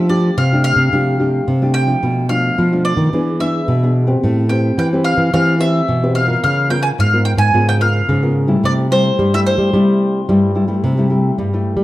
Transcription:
Already playing: nylon-string guitar F3
0.09 nylon-string guitar A3 D4 G4, mandolin D5
0.37 nylon-string guitar C3, mandolin F5
0.52 nylon-string guitar A3 D4 G4
0.64 mandolin F5
0.76 nylon-string guitar C3
0.93 nylon-string guitar C3 F3 A3 D4 G4
1.19 nylon-string guitar A3 D4 G4
1.48 nylon-string guitar C3
1.62 nylon-string guitar A3 D4 G4
1.74 mandolin G5
1.87 nylon-string guitar F3 A3 D4
2.03 nylon-string guitar B2
2.29 nylon-string guitar F3 A3 D4, mandolin F5
2.58 nylon-string guitar B2 F3
2.72 nylon-string guitar F3 A3 D4
2.85 mandolin D5
2.97 nylon-string guitar D#3
3.13 nylon-string guitar E3 B3 D4 G#4
3.39 nylon-string guitar B3 D4 G#4, mandolin E5
3.68 nylon-string guitar B2
3.83 nylon-string guitar B3 D4 G#4
4.07 nylon-string guitar C4 G4 B4
4.24 nylon-string guitar A2 A3
4.49 nylon-string guitar C4 G4 B4, mandolin G5
4.78 nylon-string guitar E3, mandolin G5
4.93 nylon-string guitar C4 G4 B4
5.04 mandolin F5
5.18 nylon-string guitar E3
5.33 nylon-string guitar E3 A3 C4 G4 B4, mandolin F5
5.59 nylon-string guitar C4 G4 B4, mandolin E5
5.88 nylon-string guitar B2 E3
6.03 nylon-string guitar C4 G4 B4
6.15 mandolin F5
6.27 nylon-string guitar B3 F4 A#4
6.43 nylon-string guitar C#3, mandolin F5
6.69 nylon-string guitar B3 F4 A#4, mandolin G5
6.83 mandolin G#5
6.98 nylon-string guitar G#2, mandolin F5
7.13 nylon-string guitar B3 F4 A#4
7.25 mandolin G5
7.37 nylon-string guitar G#2, mandolin G#5
7.53 nylon-string guitar G#2 C#3 B3 F4 A#4
7.69 mandolin G5
7.80 nylon-string guitar B3 F4 A#4, mandolin F5
8.09 nylon-string guitar G#2 C#3
8.23 nylon-string guitar B3 F4 A#4
8.47 nylon-string guitar G3 A3 E4
8.63 nylon-string guitar C3, mandolin D5
8.90 nylon-string guitar G3 A3 E4, mandolin C5
9.19 nylon-string guitar G2 G3
9.33 nylon-string guitar G3 A3 E4, mandolin E5
9.46 mandolin C5
9.58 nylon-string guitar G3
9.73 nylon-string guitar C3 G3 A3 E4
10.29 nylon-string guitar G2 G3 A3 E4
10.55 nylon-string guitar G3 A3 E4
10.68 nylon-string guitar G3 A3 E4
10.84 nylon-string guitar C3
10.98 nylon-string guitar G3 A3 E4
11.10 nylon-string guitar G3 A3 E4
11.38 nylon-string guitar G2 G3
11.53 nylon-string guitar G3 A3 E4
11.77 nylon-string guitar G3

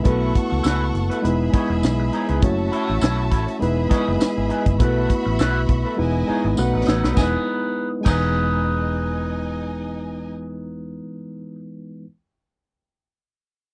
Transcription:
0.03 fingered electric bass B1, tine electric piano A3 B3 E4 F#4 B4, clean electric guitar E4 A4 B4, violin section A4 F#5 C#6, kick, closed hi-hat
0.35 kick, closed hi-hat
0.50 fingered electric bass C#2, muted clean electric guitar stroke
0.63 fingered electric bass C#2, clean electric guitar E4 A4 B4, snare, closed hi-hat, tambourine
0.94 fingered electric bass F#1, muted clean electric guitar stroke, closed hi-hat
1.10 clean electric guitar E4 A4 B4, closed hi-hat
1.22 fingered electric bass E1, tine electric piano G#3 B3 D#4 E4 B4, violin section G#4 E5 B5, muted clean electric guitar stroke, closed hi-hat
1.52 tine electric piano G#3 B3 E4 B4 D#5, clean electric guitar D#4 G#4 C#5, muted fingered electric bass stroke, kick, closed hi-hat
1.70 fingered electric bass E1, muted clean electric guitar stroke
1.83 fingered electric bass B1, muted clean electric guitar stroke, snare, closed hi-hat, tambourine
2.00 muted clean electric guitar stroke
2.13 clean electric guitar D#4 G#4 C#5, closed hi-hat
2.28 fingered electric bass C#2, clean electric guitar D#4 G#4 B4, closed hi-hat
2.41 fingered electric bass F#1, tine electric piano A3 C#4 E4 F#4 C#5, violin section F#4 E5 A5, kick, closed hi-hat
2.72 clean electric guitar E4 A4 C#5, closed hi-hat
2.89 fingered electric bass A1
3.01 fingered electric bass B1, clean electric guitar E4 A4 C#5, snare, closed hi-hat, tambourine
3.17 muted clean electric guitar stroke
3.31 fingered electric bass A1, clean electric guitar E4 A4 C#5, kick, closed hi-hat
3.47 muted clean electric guitar stroke, closed hi-hat
3.60 fingered electric bass E1, tine electric piano G#3 B3 D#4 E4 B4, violin section G#4 E5 B5, muted clean electric guitar stroke, closed hi-hat
3.77 muted clean electric guitar stroke
3.90 tine electric piano G#3 B3 E4 B4 D#5, clean electric guitar D#4 G#4 C#5, kick, snare, closed hi-hat
4.07 fingered electric bass F#1, muted clean electric guitar stroke
4.20 muted clean electric guitar stroke, snare, closed hi-hat, tambourine
4.38 fingered electric bass G#1
4.50 clean electric guitar D#4 G#4 B4, closed hi-hat
4.66 fingered electric bass F#1, muted clean electric guitar stroke, kick, closed hi-hat
4.79 fingered electric bass B1, tine electric piano A3 B3 E4 F#4 B4, clean electric guitar E4 A4 B4, violin section F#4 E5 B5, kick, closed hi-hat
5.10 kick, closed hi-hat
5.26 fingered electric bass A1, muted clean electric guitar stroke
5.39 fingered electric bass B1, clean electric guitar E4 A4 B4, snare, closed hi-hat, tambourine
5.69 fingered electric bass B1, muted clean electric guitar stroke, kick, closed hi-hat
5.85 clean electric guitar E4 A4 B4
5.97 fingered electric bass E1, tine electric piano G#3 B3 D#4 E4 B4, violin section E4 D#5 G#5, muted clean electric guitar stroke
6.27 tine electric piano G#3 B3 D#4 E4 B4, clean electric guitar D#4 G#4 C#5, muted fingered electric bass stroke
6.44 fingered electric bass G#1, muted clean electric guitar stroke
6.56 fingered electric bass B1, tine electric piano A3 B3 C#4 F#4 B4, violin section D#4 B4 F#5, muted clean electric guitar stroke, tambourine
6.64 tine electric piano D#4
6.74 fingered electric bass A1, muted clean electric guitar stroke
6.87 fingered electric bass A1, clean electric guitar D#4 A4 C#5, snare
7.04 fingered electric bass B1, clean electric guitar D#4 A4 B4, snare
7.12 tine electric piano G#3 B3, clean electric guitar D#4, violin section E4 D#5 G#5
7.17 fingered electric bass E1, tine electric piano D#4 E4, clean electric guitar G#4, kick, snare, tambourine
7.21 clean electric guitar B4, tine electric piano B4
8.01 tine electric piano G#3 B3, violin section D#4 D#5 G#5, clean electric guitar D#4
8.06 fingered electric bass E1, tine electric piano E3 D#4, clean electric guitar G#4, kick, crash, tambourine
8.10 clean electric guitar B4, tine electric piano B4

